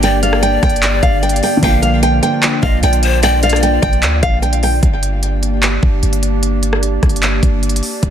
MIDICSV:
0, 0, Header, 1, 7, 480
1, 0, Start_track
1, 0, Key_signature, -2, "minor"
1, 0, Tempo, 400000
1, 34, Time_signature, 4, 2, 24, 8
1, 9721, End_track
2, 0, Start_track
2, 0, Title_t, "Nylon-string guitar"
2, 0, Program_c, 0, 24
2, 42, Note_on_c, 0, 79, 96
2, 219, Note_off_c, 0, 79, 0
2, 273, Note_on_c, 0, 77, 76
2, 453, Note_off_c, 0, 77, 0
2, 510, Note_on_c, 0, 79, 79
2, 691, Note_off_c, 0, 79, 0
2, 754, Note_on_c, 0, 79, 83
2, 1205, Note_off_c, 0, 79, 0
2, 1231, Note_on_c, 0, 77, 78
2, 1412, Note_off_c, 0, 77, 0
2, 1473, Note_on_c, 0, 79, 84
2, 1653, Note_off_c, 0, 79, 0
2, 1720, Note_on_c, 0, 79, 80
2, 1898, Note_off_c, 0, 79, 0
2, 1965, Note_on_c, 0, 79, 103
2, 2141, Note_off_c, 0, 79, 0
2, 2188, Note_on_c, 0, 77, 80
2, 2370, Note_off_c, 0, 77, 0
2, 2433, Note_on_c, 0, 79, 84
2, 2613, Note_off_c, 0, 79, 0
2, 2672, Note_on_c, 0, 79, 82
2, 3123, Note_off_c, 0, 79, 0
2, 3155, Note_on_c, 0, 77, 76
2, 3334, Note_off_c, 0, 77, 0
2, 3401, Note_on_c, 0, 79, 80
2, 3848, Note_off_c, 0, 79, 0
2, 3880, Note_on_c, 0, 79, 96
2, 4058, Note_off_c, 0, 79, 0
2, 4119, Note_on_c, 0, 77, 76
2, 4297, Note_off_c, 0, 77, 0
2, 4355, Note_on_c, 0, 79, 75
2, 4534, Note_off_c, 0, 79, 0
2, 4589, Note_on_c, 0, 79, 89
2, 5042, Note_off_c, 0, 79, 0
2, 5073, Note_on_c, 0, 77, 86
2, 5253, Note_off_c, 0, 77, 0
2, 5307, Note_on_c, 0, 79, 75
2, 5490, Note_off_c, 0, 79, 0
2, 5561, Note_on_c, 0, 79, 76
2, 5738, Note_off_c, 0, 79, 0
2, 9721, End_track
3, 0, Start_track
3, 0, Title_t, "Pan flute"
3, 0, Program_c, 1, 75
3, 31, Note_on_c, 1, 74, 127
3, 1904, Note_off_c, 1, 74, 0
3, 1952, Note_on_c, 1, 77, 108
3, 2404, Note_off_c, 1, 77, 0
3, 3153, Note_on_c, 1, 75, 76
3, 3381, Note_off_c, 1, 75, 0
3, 3393, Note_on_c, 1, 74, 81
3, 3621, Note_off_c, 1, 74, 0
3, 3633, Note_on_c, 1, 72, 91
3, 3861, Note_off_c, 1, 72, 0
3, 3874, Note_on_c, 1, 74, 108
3, 5265, Note_off_c, 1, 74, 0
3, 9721, End_track
4, 0, Start_track
4, 0, Title_t, "Ambient pad"
4, 0, Program_c, 2, 92
4, 0, Note_on_c, 2, 58, 80
4, 0, Note_on_c, 2, 62, 74
4, 0, Note_on_c, 2, 67, 73
4, 0, Note_on_c, 2, 74, 87
4, 1905, Note_off_c, 2, 74, 0
4, 1915, Note_off_c, 2, 67, 0
4, 1954, Note_on_c, 2, 65, 75
4, 1954, Note_on_c, 2, 74, 88
4, 5745, Note_off_c, 2, 58, 0
4, 5745, Note_off_c, 2, 62, 0
4, 5755, Note_off_c, 2, 65, 0
4, 5755, Note_off_c, 2, 74, 0
4, 5793, Note_on_c, 2, 62, 70
4, 5794, Note_on_c, 2, 58, 77
4, 5794, Note_on_c, 2, 67, 71
4, 5794, Note_on_c, 2, 74, 87
4, 9595, Note_off_c, 2, 62, 0
4, 9595, Note_off_c, 2, 67, 0
4, 9634, Note_on_c, 2, 62, 72
4, 9634, Note_on_c, 2, 65, 74
4, 9721, Note_off_c, 2, 58, 0
4, 9721, Note_off_c, 2, 62, 0
4, 9721, Note_off_c, 2, 65, 0
4, 9721, Note_off_c, 2, 74, 0
4, 9721, End_track
5, 0, Start_track
5, 0, Title_t, "Grand piano"
5, 0, Program_c, 3, 0
5, 0, Control_c, 3, 64, 127
5, 0, Note_on_c, 3, 50, 68
5, 0, Note_on_c, 3, 55, 59
5, 0, Note_on_c, 3, 58, 65
5, 0, Note_on_c, 3, 62, 70
5, 1864, Note_off_c, 3, 50, 0
5, 1882, Note_on_c, 3, 50, 71
5, 1895, Note_off_c, 3, 55, 0
5, 1917, Note_off_c, 3, 58, 0
5, 1926, Note_on_c, 3, 53, 62
5, 1939, Note_off_c, 3, 62, 0
5, 1970, Control_c, 3, 64, 0
5, 1971, Note_on_c, 3, 58, 71
5, 2014, Note_on_c, 3, 62, 72
5, 2206, Control_c, 3, 64, 127
5, 5710, Note_off_c, 3, 50, 0
5, 5732, Note_off_c, 3, 53, 0
5, 5754, Note_off_c, 3, 58, 0
5, 5776, Note_off_c, 3, 62, 0
5, 5811, Control_c, 3, 64, 0
5, 9721, End_track
6, 0, Start_track
6, 0, Title_t, "808-style bass"
6, 0, Program_c, 4, 38
6, 0, Note_on_c, 4, 31, 107
6, 705, Note_off_c, 4, 31, 0
6, 753, Note_on_c, 4, 31, 110
6, 1214, Note_off_c, 4, 31, 0
6, 1233, Note_on_c, 4, 31, 109
6, 1694, Note_off_c, 4, 31, 0
6, 1953, Note_on_c, 4, 34, 113
6, 2644, Note_off_c, 4, 34, 0
6, 3153, Note_on_c, 4, 34, 109
6, 3384, Note_off_c, 4, 34, 0
6, 3394, Note_on_c, 4, 34, 103
6, 4545, Note_off_c, 4, 34, 0
6, 4593, Note_on_c, 4, 34, 111
6, 4833, Note_on_c, 4, 38, 103
6, 4851, Note_off_c, 4, 34, 0
6, 5061, Note_off_c, 4, 38, 0
6, 5073, Note_on_c, 4, 34, 108
6, 5765, Note_off_c, 4, 34, 0
6, 5793, Note_on_c, 4, 31, 117
6, 6945, Note_off_c, 4, 31, 0
6, 6993, Note_on_c, 4, 31, 109
6, 7223, Note_off_c, 4, 31, 0
6, 7233, Note_on_c, 4, 31, 104
6, 8385, Note_off_c, 4, 31, 0
6, 8433, Note_on_c, 4, 31, 109
6, 8894, Note_off_c, 4, 31, 0
6, 8913, Note_on_c, 4, 31, 106
6, 9374, Note_off_c, 4, 31, 0
6, 9633, Note_on_c, 4, 34, 113
6, 9721, Note_off_c, 4, 34, 0
6, 9721, End_track
7, 0, Start_track
7, 0, Title_t, "Drums"
7, 33, Note_on_c, 9, 42, 96
7, 153, Note_off_c, 9, 42, 0
7, 273, Note_on_c, 9, 42, 88
7, 393, Note_off_c, 9, 42, 0
7, 393, Note_on_c, 9, 37, 90
7, 513, Note_off_c, 9, 37, 0
7, 513, Note_on_c, 9, 42, 76
7, 633, Note_off_c, 9, 42, 0
7, 753, Note_on_c, 9, 36, 96
7, 753, Note_on_c, 9, 37, 71
7, 753, Note_on_c, 9, 42, 44
7, 833, Note_off_c, 9, 42, 0
7, 833, Note_on_c, 9, 42, 58
7, 873, Note_off_c, 9, 36, 0
7, 873, Note_off_c, 9, 37, 0
7, 913, Note_off_c, 9, 42, 0
7, 913, Note_on_c, 9, 42, 77
7, 993, Note_off_c, 9, 42, 0
7, 993, Note_on_c, 9, 39, 118
7, 993, Note_on_c, 9, 42, 88
7, 1113, Note_off_c, 9, 39, 0
7, 1113, Note_off_c, 9, 42, 0
7, 1233, Note_on_c, 9, 36, 93
7, 1233, Note_on_c, 9, 42, 78
7, 1353, Note_off_c, 9, 36, 0
7, 1353, Note_off_c, 9, 42, 0
7, 1473, Note_on_c, 9, 42, 50
7, 1553, Note_off_c, 9, 42, 0
7, 1553, Note_on_c, 9, 42, 67
7, 1633, Note_off_c, 9, 42, 0
7, 1633, Note_on_c, 9, 42, 87
7, 1713, Note_on_c, 9, 46, 87
7, 1753, Note_off_c, 9, 42, 0
7, 1833, Note_off_c, 9, 46, 0
7, 1953, Note_on_c, 9, 36, 120
7, 1953, Note_on_c, 9, 42, 95
7, 2073, Note_off_c, 9, 36, 0
7, 2073, Note_off_c, 9, 42, 0
7, 2193, Note_on_c, 9, 42, 84
7, 2313, Note_off_c, 9, 42, 0
7, 2433, Note_on_c, 9, 42, 78
7, 2553, Note_off_c, 9, 42, 0
7, 2673, Note_on_c, 9, 42, 71
7, 2793, Note_off_c, 9, 42, 0
7, 2913, Note_on_c, 9, 39, 109
7, 2913, Note_on_c, 9, 42, 85
7, 3033, Note_off_c, 9, 39, 0
7, 3033, Note_off_c, 9, 42, 0
7, 3153, Note_on_c, 9, 36, 94
7, 3273, Note_off_c, 9, 36, 0
7, 3394, Note_on_c, 9, 42, 71
7, 3513, Note_off_c, 9, 42, 0
7, 3513, Note_on_c, 9, 42, 67
7, 3633, Note_off_c, 9, 42, 0
7, 3633, Note_on_c, 9, 42, 87
7, 3753, Note_off_c, 9, 42, 0
7, 3873, Note_on_c, 9, 42, 97
7, 3993, Note_off_c, 9, 42, 0
7, 4113, Note_on_c, 9, 42, 84
7, 4194, Note_off_c, 9, 42, 0
7, 4194, Note_on_c, 9, 42, 67
7, 4234, Note_on_c, 9, 37, 89
7, 4274, Note_off_c, 9, 42, 0
7, 4274, Note_on_c, 9, 42, 50
7, 4353, Note_off_c, 9, 42, 0
7, 4353, Note_on_c, 9, 42, 74
7, 4354, Note_off_c, 9, 37, 0
7, 4473, Note_off_c, 9, 42, 0
7, 4593, Note_on_c, 9, 36, 101
7, 4593, Note_on_c, 9, 42, 73
7, 4713, Note_off_c, 9, 36, 0
7, 4713, Note_off_c, 9, 42, 0
7, 4714, Note_on_c, 9, 42, 44
7, 4834, Note_off_c, 9, 42, 0
7, 4834, Note_on_c, 9, 39, 115
7, 4834, Note_on_c, 9, 42, 87
7, 4954, Note_off_c, 9, 39, 0
7, 4954, Note_off_c, 9, 42, 0
7, 5073, Note_on_c, 9, 36, 95
7, 5074, Note_on_c, 9, 42, 75
7, 5193, Note_off_c, 9, 36, 0
7, 5194, Note_off_c, 9, 42, 0
7, 5314, Note_on_c, 9, 42, 50
7, 5433, Note_off_c, 9, 42, 0
7, 5433, Note_on_c, 9, 42, 84
7, 5553, Note_off_c, 9, 42, 0
7, 5553, Note_on_c, 9, 46, 85
7, 5673, Note_off_c, 9, 46, 0
7, 5793, Note_on_c, 9, 36, 114
7, 5793, Note_on_c, 9, 42, 94
7, 5913, Note_off_c, 9, 36, 0
7, 5913, Note_off_c, 9, 42, 0
7, 6033, Note_on_c, 9, 42, 84
7, 6153, Note_off_c, 9, 42, 0
7, 6273, Note_on_c, 9, 42, 75
7, 6393, Note_off_c, 9, 42, 0
7, 6513, Note_on_c, 9, 42, 71
7, 6633, Note_off_c, 9, 42, 0
7, 6753, Note_on_c, 9, 39, 110
7, 6753, Note_on_c, 9, 42, 88
7, 6873, Note_off_c, 9, 39, 0
7, 6873, Note_off_c, 9, 42, 0
7, 6993, Note_on_c, 9, 36, 92
7, 7113, Note_off_c, 9, 36, 0
7, 7233, Note_on_c, 9, 42, 66
7, 7353, Note_off_c, 9, 42, 0
7, 7353, Note_on_c, 9, 42, 66
7, 7473, Note_off_c, 9, 42, 0
7, 7473, Note_on_c, 9, 42, 89
7, 7593, Note_off_c, 9, 42, 0
7, 7713, Note_on_c, 9, 42, 92
7, 7833, Note_off_c, 9, 42, 0
7, 7953, Note_on_c, 9, 42, 84
7, 8073, Note_off_c, 9, 42, 0
7, 8073, Note_on_c, 9, 37, 84
7, 8193, Note_off_c, 9, 37, 0
7, 8193, Note_on_c, 9, 42, 76
7, 8313, Note_off_c, 9, 42, 0
7, 8433, Note_on_c, 9, 36, 95
7, 8433, Note_on_c, 9, 37, 68
7, 8433, Note_on_c, 9, 42, 43
7, 8513, Note_off_c, 9, 42, 0
7, 8513, Note_on_c, 9, 42, 58
7, 8553, Note_off_c, 9, 36, 0
7, 8553, Note_off_c, 9, 37, 0
7, 8593, Note_off_c, 9, 42, 0
7, 8593, Note_on_c, 9, 42, 73
7, 8673, Note_off_c, 9, 42, 0
7, 8673, Note_on_c, 9, 39, 111
7, 8673, Note_on_c, 9, 42, 83
7, 8793, Note_off_c, 9, 39, 0
7, 8793, Note_off_c, 9, 42, 0
7, 8913, Note_on_c, 9, 36, 89
7, 8913, Note_on_c, 9, 42, 75
7, 9033, Note_off_c, 9, 36, 0
7, 9033, Note_off_c, 9, 42, 0
7, 9153, Note_on_c, 9, 42, 49
7, 9233, Note_off_c, 9, 42, 0
7, 9233, Note_on_c, 9, 42, 64
7, 9313, Note_off_c, 9, 42, 0
7, 9313, Note_on_c, 9, 42, 84
7, 9393, Note_on_c, 9, 46, 85
7, 9433, Note_off_c, 9, 42, 0
7, 9513, Note_off_c, 9, 46, 0
7, 9633, Note_on_c, 9, 36, 119
7, 9633, Note_on_c, 9, 42, 93
7, 9721, Note_off_c, 9, 36, 0
7, 9721, Note_off_c, 9, 42, 0
7, 9721, End_track
0, 0, End_of_file